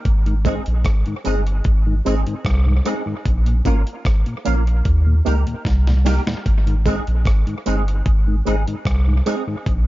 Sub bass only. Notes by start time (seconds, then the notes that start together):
0.06 G#1
0.67 A#1
0.85 G#1
1.26 G1
1.66 G#1
2.07 G#1
2.45 C2
3.26 A#1
3.66 G#1
4.06 G#1
4.47 A#1
4.86 D#2
5.27 C#2
5.65 C2
6.46 G#1
7.08 A#1
7.26 G#1
7.67 G1
8.06 G#1
8.47 G#1
8.86 C2
9.67 A#1